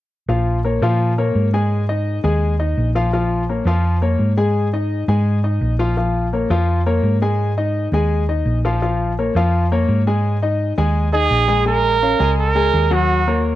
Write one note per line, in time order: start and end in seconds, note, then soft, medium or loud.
0.28 0.78 A#1 medium
0.28 0.58 F3 medium
0.28 0.58 F4 medium
0.28 0.58 F5 medium
0.64 0.79 A#3 medium
0.64 0.79 A#4 medium
0.64 0.79 C#5 medium
0.82 1.31 A#2 medium
0.82 1.11 F3 medium
0.82 1.12 F4 medium
0.82 1.12 F5 medium
1.18 1.47 A#3 medium
1.18 1.47 A#4 medium
1.18 1.47 C#5 medium
1.35 2.18 G#2 medium
1.53 1.82 G#3 medium
1.53 1.83 G#4 medium
1.53 1.83 G#5 medium
1.89 2.18 D#4 medium
1.89 2.18 D#5 medium
2.24 2.74 D#2 medium
2.24 2.53 G#3 medium
2.24 2.53 G#4 medium
2.24 2.53 G#5 medium
2.59 2.89 D#4 medium
2.59 2.89 D#5 medium
2.77 3.61 A#1 medium
2.95 3.10 F3 medium
2.95 3.10 F4 medium
2.95 3.10 F5 medium
3.13 3.42 F3 medium
3.13 3.42 F4 medium
3.13 3.43 F5 medium
3.49 3.64 A#3 medium
3.49 3.64 A#4 medium
3.49 3.64 C#5 medium
3.65 4.15 F2 medium
3.65 3.96 F3 medium
3.65 3.96 F4 medium
3.65 3.96 F5 medium
4.02 4.31 A#3 medium
4.02 4.31 A#4 medium
4.02 4.31 C#5 medium
4.19 5.03 G#2 medium
4.37 4.67 G#3 medium
4.37 4.67 G#4 medium
4.37 4.67 G#5 medium
4.73 5.02 D#4 medium
4.73 5.03 D#5 medium
5.08 5.58 G#2 medium
5.08 5.38 G#3 medium
5.08 5.38 G#4 medium
5.08 5.38 G#5 medium
5.44 5.73 D#4 medium
5.44 5.73 D#5 medium
5.61 6.45 A#1 medium
5.79 5.94 F3 medium
5.79 5.94 F4 medium
5.79 5.94 F5 medium
5.97 6.26 F3 medium
5.97 6.27 F4 medium
5.97 6.27 F5 medium
6.33 6.48 A#3 medium
6.33 6.48 A#4 medium
6.33 6.48 C#5 medium
6.50 7.00 F2 loud
6.50 6.80 F3 medium
6.50 6.80 F4 medium
6.50 6.80 F5 medium
6.86 7.16 A#3 medium
6.86 7.16 A#4 medium
6.86 7.16 C#5 medium
7.03 7.87 G#2 medium
7.22 7.51 G#3 medium
7.22 7.51 G#4 medium
7.22 7.51 G#5 medium
7.57 7.87 D#4 medium
7.57 7.87 D#5 medium
7.92 8.42 D#2 medium
7.92 8.22 G#3 medium
7.92 8.23 G#4 medium
7.92 8.23 G#5 medium
8.29 8.58 D#4 medium
8.29 8.58 D#5 medium
8.45 9.29 A#1 medium
8.65 8.79 F3 medium
8.65 8.79 F4 medium
8.65 8.80 F5 medium
8.82 9.11 F3 medium
8.82 9.11 F4 medium
8.82 9.12 F5 medium
9.19 9.33 A#3 medium
9.19 9.33 A#4 medium
9.19 9.33 C#5 medium
9.35 9.85 F2 medium
9.35 9.65 F3 medium
9.35 9.65 F4 medium
9.35 9.65 F5 medium
9.72 10.01 A#3 medium
9.72 10.01 A#4 medium
9.72 10.01 C#5 medium
9.88 10.72 G#2 medium
10.07 10.36 G#3 medium
10.07 10.36 G#4 medium
10.07 10.36 G#5 medium
10.42 10.72 D#4 medium
10.42 10.72 D#5 medium
10.78 11.27 D#2 medium
10.78 11.07 G#3 medium
10.78 11.07 G#4 medium
10.78 11.07 G#5 medium
11.13 11.42 D#4 medium
11.13 11.63 G#4 loud
11.13 11.42 D#5 medium
11.31 12.14 A#1 medium
11.48 11.63 G#3 medium
11.48 11.63 G#4 medium
11.48 11.64 G#5 medium
11.66 11.95 G#3 medium
11.66 11.95 G#4 medium
11.66 12.34 A#4 loud
11.66 11.96 G#5 medium
12.02 12.17 C#4 medium
12.02 12.17 C#5 medium
12.02 12.17 F5 medium
12.19 12.70 C#2 medium
12.19 12.49 G#3 medium
12.19 12.49 G#4 medium
12.19 12.49 G#5 medium
12.39 12.95 A#4 loud
12.55 12.85 G#3 medium
12.55 12.85 G#4 medium
12.55 12.85 G#5 medium
12.74 13.55 D#2 medium
12.91 13.20 F#3 medium
12.91 13.20 F#4 medium
12.91 13.46 F#4 medium
12.91 13.21 F#5 medium
13.27 13.55 A#3 medium
13.27 13.55 A#4 medium
13.27 13.55 C#5 medium